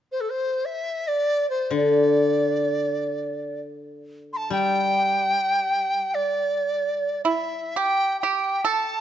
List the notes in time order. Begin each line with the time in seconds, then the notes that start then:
0.12 C5
0.21 A4
0.30 C5
0.65 E5
1.08 D5
1.50 C5
1.71 D3
1.76 D5
4.33 A5 C6
4.50 G3 G5
6.14 D5
7.24 E4 E5
7.76 G4 G5
8.20 G4 G5
8.65 A4 A5